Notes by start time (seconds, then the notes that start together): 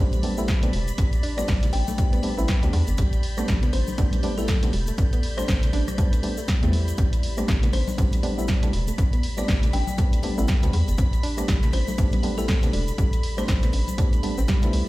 Already playing: G3 A3 G4 D5 B5 B6
0.00 A1 B3 C4 D4
0.12 closed hi-hat, high conga, shaker
0.23 G3 A3 B3 C4 D4, open hi-hat, high conga
0.37 G3 A3 B3 C4 E4, shaker
0.48 kick, snare, closed hi-hat, shaker
0.62 G3 A3 B3 C4 D4, closed hi-hat, high conga, low conga, shaker
0.73 E1, open hi-hat, muted conga
0.88 closed hi-hat, shaker
0.98 A1 C4, kick, closed hi-hat, shaker
1.13 closed hi-hat, shaker
1.23 D4, open hi-hat
1.37 G3 A3 B3 C4 D4 D5, cross-stick, closed hi-hat, shaker
1.48 A1 G3, kick, snare, closed hi-hat, shaker
1.62 closed hi-hat, low conga, shaker
1.73 A1 G5, open hi-hat, muted conga
1.88 A3, high conga, shaker
1.98 G3 A3 B3 C4 D4, kick, closed hi-hat, shaker
2.13 B3, closed hi-hat, shaker
2.23 G3 A3 B3 C4 D4, open hi-hat, muted conga, high conga
2.37 A1 G3 A3 B3 C4 E4, shaker
2.48 C4, kick, snare, closed hi-hat, shaker
2.62 D2 G3 A3 B3 C4 D4, closed hi-hat, high conga, low conga, shaker
2.73 E2 D4, open hi-hat, muted conga, high conga
2.87 G1, closed hi-hat, shaker
2.97 A1 G3 G6, kick, closed hi-hat, shaker
3.13 closed hi-hat, shaker
3.23 open hi-hat
3.37 G3 A3 B3 C4 D4, cross-stick, closed hi-hat, shaker
3.48 A1, kick, snare, closed hi-hat, shaker
3.63 B3, closed hi-hat, low conga, shaker
3.73 A1 C5, open hi-hat, muted conga
3.87 high conga, shaker
3.98 A1 G3 A3 B3 C4 D4, kick, closed hi-hat, shaker
4.13 closed hi-hat, high conga, shaker
4.23 G3 A3 B3 C4 D4, open hi-hat, high conga
4.37 G3 A3 B3 C4 E4 A4, shaker
4.48 G3, kick, snare, closed hi-hat, shaker
4.62 G3 A3 B3 C4 D4, closed hi-hat, high conga, low conga, shaker
4.73 E1, open hi-hat, muted conga
4.87 A3, closed hi-hat, shaker
4.98 A1, kick, closed hi-hat, shaker
5.13 B3, closed hi-hat, shaker
5.23 open hi-hat
5.37 G3 A3 C4 D4 C5, cross-stick, closed hi-hat, shaker
5.48 A1 C4, kick, snare, closed hi-hat, shaker
5.63 closed hi-hat, low conga, shaker
5.73 A1 D4, open hi-hat, muted conga
5.88 cross-stick, closed hi-hat, high conga, shaker
5.98 G3 A3 B3 C4 D4, kick, closed hi-hat, shaker
6.13 closed hi-hat, shaker
6.22 G3 A3 B3 C4 D4, open hi-hat, muted conga, high conga
6.37 A3, shaker
6.48 kick, snare, closed hi-hat, shaker
6.62 E2 G3 A3 B3 C4 E4, closed hi-hat, high conga, low conga, shaker
6.73 open hi-hat, muted conga, high conga
6.88 closed hi-hat, shaker
6.98 A1 G3 B5 B6, kick, closed hi-hat, shaker
7.13 closed hi-hat, shaker
7.23 open hi-hat
7.37 G3 A3 B3 C4 D4 B5, cross-stick, closed hi-hat, shaker
7.48 A1, kick, snare, closed hi-hat, shaker
7.63 B3, closed hi-hat, low conga, shaker
7.73 A1 C5, open hi-hat, muted conga
7.88 high conga, shaker
7.97 A1 G3 A3 B3 C4 D4, kick, closed hi-hat, shaker
8.12 closed hi-hat, high conga, shaker
8.23 G3 A3 B3 C4 D4, open hi-hat, high conga
8.37 G3 A3 B3 C4 E4, shaker
8.48 G3, kick, snare, closed hi-hat, shaker
8.62 G3 A3 B3 C4 D4, closed hi-hat, high conga, low conga, shaker
8.73 E1, open hi-hat, muted conga
8.87 A3, closed hi-hat, shaker
8.98 A1, kick, closed hi-hat, shaker
9.13 B3, closed hi-hat, shaker
9.23 open hi-hat
9.37 G3 A3 B3 C4 D4 D5, cross-stick, closed hi-hat, shaker
9.48 A1 C4, kick, snare, closed hi-hat, shaker
9.63 closed hi-hat, low conga, shaker
9.73 A1 D4 G5, open hi-hat, muted conga
9.87 high conga, shaker
9.98 G3 A3 B3 C4 D4, kick, closed hi-hat, shaker
10.13 closed hi-hat, shaker
10.23 G3 A3 B3 C4 D4, open hi-hat, muted conga, high conga
10.37 A1 G3 A3 B3 C4 E4, shaker
10.48 kick, snare, closed hi-hat, shaker
10.62 D2 G3 A3 B3 C4 D4, closed hi-hat, high conga, low conga, shaker
10.73 E2, open hi-hat, muted conga, high conga
10.88 G1, closed hi-hat, shaker
10.98 A1 C4, kick, closed hi-hat, shaker
11.13 closed hi-hat, shaker
11.23 D4, open hi-hat
11.37 G3 A3 B3 C4 D4, cross-stick, closed hi-hat, shaker
11.48 A1 G3, kick, snare, closed hi-hat, shaker
11.63 closed hi-hat, low conga, shaker
11.73 A1 C5, open hi-hat, muted conga
11.88 A3, high conga, shaker
11.98 A1 G3 A3 B3 C4 D4, kick, closed hi-hat, shaker
12.12 B3, closed hi-hat, high conga, shaker
12.23 G3 A3 B3 C4 D4, open hi-hat, high conga
12.37 G3 A3 B3 C4 E4 A4, shaker
12.48 C4, kick, snare, closed hi-hat, shaker
12.62 G3 A3 B3 C4 D4, closed hi-hat, high conga, low conga, shaker
12.73 E1 D4, open hi-hat, muted conga
12.88 closed hi-hat, shaker
12.98 A1 G3, kick, closed hi-hat, shaker
13.13 closed hi-hat, shaker
13.23 open hi-hat
13.37 G3 A3 C4 D4 C5, cross-stick, closed hi-hat, shaker
13.48 A1, kick, snare, closed hi-hat, shaker
13.63 B3, closed hi-hat, low conga, shaker
13.73 A1, open hi-hat, muted conga
13.88 closed hi-hat, high conga, shaker
13.98 G3 A3 B3 C4 D4, kick, closed hi-hat, shaker
14.13 closed hi-hat, shaker
14.23 G3 A3 B3 C4 D4, open hi-hat, muted conga, high conga
14.38 A1 C4, shaker
14.48 G3, kick, snare, closed hi-hat, shaker
14.62 G3 A3 B3 C4 D4 E4, closed hi-hat, high conga, low conga, shaker
14.73 C2, open hi-hat, muted conga, high conga